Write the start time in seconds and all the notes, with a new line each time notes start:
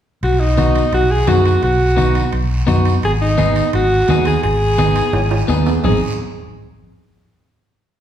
0.23 B1 F#4, high conga, high timbale, long guiro
0.40 D#4
0.57 B3 D#4 F#4, high conga, high timbale, short guiro
0.75 high timbale, short guiro
0.92 B1 F#4, high timbale, long guiro
1.11 G#4
1.27 F#2 B3 D#4 F#4, high conga, high timbale, low timbale, short guiro
1.45 F#4, high timbale, short guiro
1.62 B1 F#4, high conga, high timbale, long guiro
1.97 B3 D#4 F#4, high conga, high timbale, short guiro
2.15 high timbale, short guiro
2.33 B1, high conga, high timbale, long guiro
2.67 F#2 B3 D#4 F#4, high conga, high timbale, short guiro
2.85 high timbale, short guiro
3.02 G#1 G#4, high conga, high timbale, long guiro
3.22 D#4
3.37 B3 D#4 G#4, high conga, high timbale, short guiro
3.56 high timbale, short guiro
3.73 G#1 F#4, high conga, high timbale, long guiro
4.08 D#2 B3 D#4 G#4, high conga, high timbale, low timbale, short guiro
4.25 G#4, high timbale, short guiro
4.43 G#1 G#4, high conga, high timbale, long guiro
4.78 B3 D#4 G#4, high conga, high timbale, short guiro
4.96 high timbale, short guiro
5.13 G#1, high conga, high timbale, long guiro
5.31 high timbale
5.48 D#2 B3 D#4 G#4, high conga, short guiro
5.66 low timbale, short guiro
5.84 G#1 C4 D#4 G#4, low conga, low timbale, long guiro